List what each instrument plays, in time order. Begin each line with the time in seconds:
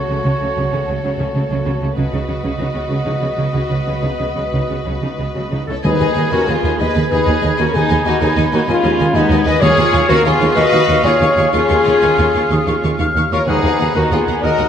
Already playing: french horn section A3 F#4, violin section F#4 A4, trumpet section C#5
0.08 double bass section C#2, cello section C#3, viola section F#3
0.24 double bass section C#2, cello section C#3, viola section C#4
0.39 double bass section C#2, cello section C#3, viola section A3
0.56 double bass section C#2, cello section C#3, viola section F#3
0.72 double bass section C#2, cello section C#3, viola section C#4
0.88 double bass section C#2, cello section C#3, viola section A3
1.02 double bass section C#2, cello section C#3, viola section F#3
1.18 double bass section C#2, cello section C#3, viola section C#4
1.34 double bass section C#2, cello section C#3, viola section A3
1.50 double bass section C#2, cello section C#3, viola section F#3
1.66 double bass section C#2, cello section C#3, viola section C#4
1.81 double bass section C#2, cello section C#3, viola section A3
1.96 double bass section C#2, cello section C#3, viola section F#3, french horn section B3 F#4, violin section F#4 B4, trumpet section D#5
2.12 double bass section C#2, cello section C#3, viola section D#4
2.28 double bass section C#2, cello section C#3, viola section B3
2.43 double bass section C#2, cello section C#3, viola section F#3
2.58 double bass section C#2, cello section C#3, viola section D#4
2.74 double bass section C#2, cello section C#3, viola section B3
2.89 double bass section C#2, cello section C#3, viola section F#3
3.05 double bass section C#2, cello section C#3, viola section D#4
3.21 double bass section C#2, cello section C#3, viola section B3
3.37 double bass section C#2, cello section C#3, viola section F#3
3.53 double bass section C#2, cello section C#3, viola section D#4
3.70 double bass section C#2, cello section C#3, viola section B3
3.86 double bass section C#2, cello section C#3, viola section F#3
4.02 double bass section C#2, cello section C#3, viola section D#4
4.19 double bass section C#2, cello section C#3, viola section B3
4.35 double bass section C#2, cello section C#3, viola section F#3
4.52 double bass section C#2, cello section C#3, viola section D#4
4.68 double bass section C#2, cello section C#3, viola section B3
4.85 double bass section C#2, cello section C#3, viola section F#3
5.02 double bass section C#2, cello section C#3, viola section D#4
5.18 double bass section C#2, cello section C#3, viola section B3
5.35 double bass section C#2, cello section C#3, viola section F#3
5.51 double bass section C#2, cello section C#3, viola section D#4
5.67 double bass section C#2, cello section C#3, viola section B3 E4, clarinet A4, violin section A4, french horn section C#5
5.83 double bass section D#2, cello section D#2, tuba D#2, timpani D#3, viola section D#4, clarinet G#4, violin section G#4 D#5 G#5, french horn section B4, oboe G#5, flute B5
5.99 double bass section D#2, cello section D#2, tuba D#2, violin section D#5 G#5
6.15 double bass section D#2, cello section D#2, tuba D#2, violin section D#5 G#5
6.31 double bass section D#2, cello section D#2, tuba D#2, viola section C#4, clarinet F#4, violin section F#4 D#5 G#5, french horn section A#4
6.46 double bass section D#2, cello section D#2, tuba D#2, viola section B3, clarinet F4, violin section F4 D#5 G#5, french horn section G#4
6.63 double bass section D#2, cello section D#2, tuba D#2, violin section D#5 G#5
6.79 cello section D#2, double bass section D#2, tuba D#2, viola section G#4, clarinet B4, violin section B4 D#5 G#5, french horn section D#5
6.95 double bass section D#2, cello section D#2, tuba D#2, violin section D#5 G#5
7.08 double bass section D#2, cello section D#2, tuba D#2, viola section D#4, clarinet G#4, french horn section B4, violin section D#5 G#5
7.13 violin section G#4
7.26 double bass section D#2, cello section D#2, tuba D#2, violin section D#5 G#5
7.42 cello section D#2, double bass section D#2, tuba D#2, violin section D#5 G#5
7.57 double bass section D#2, cello section D#2, tuba D#2, viola section C#4, clarinet F#4, violin section F#4 D#5 G#5, french horn section A#4
7.74 double bass section D#2, tuba D#2, cello section D#2, viola section B3, clarinet D#4, violin section D#4 D#5 G#5, french horn section G#4
7.89 cello section D#2, tuba D#2, double bass section D#2, violin section D#5 G#5
8.05 cello section D#2, tuba D#2, double bass section D#2, viola section A#3, clarinet D#4, violin section D#4 D#5 G#5, french horn section F#4
8.21 cello section D#2, double bass section D#2, tuba D#2, viola section B3, clarinet D#4, violin section D#4 D#5 G#5, french horn section G#4
8.36 double bass section D#2, cello section D#2, tuba D#2, violin section D#5 G#5
8.52 cello section D#2, double bass section D#2, tuba D#2, viola section A#3, clarinet D#4, violin section D#4 D#5 G#5, french horn section F#4
8.68 double bass section D#2, cello section D#2, tuba D#2, viola section G#3, violin section C#4 D#5 G#5, clarinet C#4, french horn section F4
8.83 double bass section D#2, cello section D#2, tuba D#2, violin section D#5 G#5
8.99 cello section D#2, double bass section D#2, tuba D#2, violin section D#5 G#5
9.14 cello section D#2, double bass section D#2, tuba D#2, viola section G#3, clarinet B3, violin section B3 D#5 G#5, french horn section D#4
9.30 double bass section D#2, cello section D#2, tuba D#2, violin section D#5 G#5
9.45 cello section D#2, double bass section D#2, tuba D#2, viola section F#4, violin section B4 D#5 G#5, clarinet B4, french horn section D#5
9.61 cello section D#2, double bass section D#2, tuba D#2, timpani D#3, viola section F4, clarinet G#4, violin section G#4 F5 C#6, french horn section C#5, oboe F5, flute C#6
9.77 cello section D#2, double bass section D#2, tuba D#2, violin section F5 C#6
9.92 cello section D#2, double bass section D#2, tuba D#2, violin section F5 C#6
10.08 cello section D#2, double bass section D#2, tuba D#2, viola section C#4, clarinet F#4, violin section F#4 F5 C#6, french horn section A#4
10.24 cello section D#2, double bass section D#2, tuba D#2, viola section B3, clarinet F4, violin section F4 F5 C#6, french horn section G#4
10.40 cello section D#2, double bass section D#2, tuba D#2, violin section F5 C#6
10.55 cello section D#2, double bass section D#2, tuba D#2, viola section F#4, clarinet B4, violin section B4 F5 C#6, french horn section D#5
10.72 cello section D#2, double bass section D#2, tuba D#2, violin section F5 C#6
10.87 cello section D#2, double bass section D#2, tuba D#2, violin section F5 C#6
11.04 cello section D#2, double bass section D#2, tuba D#2, viola section F4, clarinet G#4, violin section G#4 F5 C#6, french horn section C#5
11.20 cello section D#2, double bass section D#2, tuba D#2, violin section F5 C#6
11.37 cello section D#2, tuba D#2, double bass section D#2, violin section F5 C#6
11.52 cello section D#2, double bass section D#2, tuba D#2, viola section C#4, clarinet F4, violin section F4 F5 C#6, french horn section G#4
11.69 double bass section D#2, cello section D#2, tuba D#2, violin section F5 C#6
11.85 double bass section D#2, cello section D#2, tuba D#2, violin section F5 C#6
12.02 double bass section D#2, cello section D#2, tuba D#2, violin section F5 C#6, flute F6
12.18 double bass section D#2, cello section D#2, tuba D#2, violin section F5 C#6
12.34 double bass section D#2, cello section D#2, tuba D#2, violin section F5 C#6
12.50 double bass section D#2, cello section D#2, tuba D#2, violin section F5 C#6, flute D#6
12.67 cello section D#2, tuba D#2, double bass section D#2, violin section F5 C#6, flute C#6
12.83 double bass section D#2, cello section D#2, tuba D#2, violin section F5 C#6
12.99 double bass section D#2, cello section D#2, tuba D#2, violin section F5 C#6, flute F6
13.14 cello section D#2, double bass section D#2, tuba D#2, violin section F5 C#6
13.31 cello section D#2, double bass section D#2, tuba D#2, viola section F4, clarinet A#4, violin section A#4 F5 C#6, french horn section C#5, flute C#6
13.47 cello section D#2, double bass section D#2, tuba D#2, timpani D#3, viola section D#4, violin section G#4 A#4 D#5, clarinet G#4, french horn section B4, oboe F#5, flute A#5
13.63 double bass section D#2, cello section D#2, tuba D#2, violin section D#5 F#5
13.79 double bass section D#2, cello section D#2, tuba D#2, violin section F#5 A#5
13.95 double bass section D#2, cello section D#2, tuba D#2, viola section D#4, clarinet F#4, violin section F#4 A#4 D#5, french horn section A#4, oboe F#5, flute A#5
14.11 cello section D#2, double bass section D#2, tuba D#2, viola section B3, violin section F4 D#5 F#5, clarinet F4, french horn section G#4
14.27 cello section D#2, tuba D#2, double bass section D#2, violin section F#5 A#5
14.43 cello section D#2, double bass section D#2, tuba D#2, viola section F#4, clarinet A#4, violin section A#4 D#5, french horn section D#5, oboe F#5, flute A#5
14.58 cello section D#2, tuba D#2, double bass section D#2, violin section D#5 F#5